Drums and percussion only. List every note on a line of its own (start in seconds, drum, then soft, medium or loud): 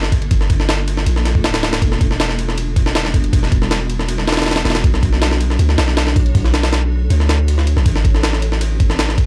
0.03 snare medium
0.12 kick loud
0.12 ride medium
0.22 ride soft
0.31 kick loud
0.31 ride medium
0.41 snare soft
0.50 kick loud
0.50 ride medium
0.60 snare soft
0.69 snare loud
0.69 ride medium
0.88 ride medium
0.97 snare soft
1.06 ride medium
1.16 snare soft
1.25 snare soft
1.25 ride medium
1.35 kick loud
1.44 snare loud
1.44 ride medium
1.54 snare loud
1.54 ride medium
1.63 snare loud
1.63 ride medium
1.73 snare loud
1.73 ride medium
1.82 kick loud
1.82 ride medium
1.92 snare medium
2.01 kick loud
2.01 ride medium
2.11 snare soft
2.20 snare loud
2.20 ride medium
2.29 snare medium
2.39 ride medium
2.49 snare soft
2.58 ride medium
2.76 kick loud
2.76 ride medium
2.86 snare medium
2.95 snare loud
2.95 ride medium
3.05 snare medium
3.14 kick loud
3.14 ride medium
3.24 ride soft
3.33 kick loud
3.33 ride medium
3.43 snare soft
3.52 kick loud
3.52 ride medium
3.62 snare soft
3.71 snare loud
3.71 ride medium
3.90 ride medium
4.00 snare soft
4.09 ride medium
4.18 snare soft
4.28 snare loud
4.28 ride medium
4.33 snare medium
4.33 ride medium
4.37 snare medium
4.37 ride medium
4.42 snare medium
4.42 ride medium
4.46 snare medium
4.46 ride medium
4.51 snare medium
4.51 ride medium
4.56 snare loud
4.56 ride medium
4.65 snare medium
4.65 ride medium
4.70 snare medium
4.70 ride medium
4.75 snare loud
4.75 ride medium
4.84 kick loud
4.84 ride medium
4.94 snare medium
5.03 kick loud
5.03 ride medium
5.13 snare soft
5.22 snare loud
5.22 ride medium
5.32 snare medium
5.41 ride medium
5.50 snare soft
5.59 ride medium
5.69 snare soft
5.78 snare loud
5.78 ride medium
5.88 snare medium
5.97 snare loud
5.97 ride medium
6.07 snare medium
6.16 kick loud
6.16 ride medium
6.26 ride soft
6.35 kick loud
6.35 ride medium
6.44 snare soft
6.54 snare loud
6.54 ride medium
6.63 snare loud
6.63 ride medium
6.73 snare loud
6.73 ride medium
7.10 ride medium
7.20 snare soft
7.29 snare loud
7.29 ride medium
7.48 ride medium
7.58 snare soft
7.67 ride medium
7.77 snare soft
7.86 kick loud
7.86 ride medium
7.96 snare medium
8.05 kick loud
8.05 ride medium
8.15 snare soft
8.23 snare loud
8.23 ride medium
8.33 snare medium
8.42 ride medium
8.52 snare soft
8.61 ride medium
8.80 kick loud
8.80 ride medium
8.90 snare medium
8.99 snare loud
8.99 ride medium
9.09 snare medium
9.18 kick medium
9.18 ride medium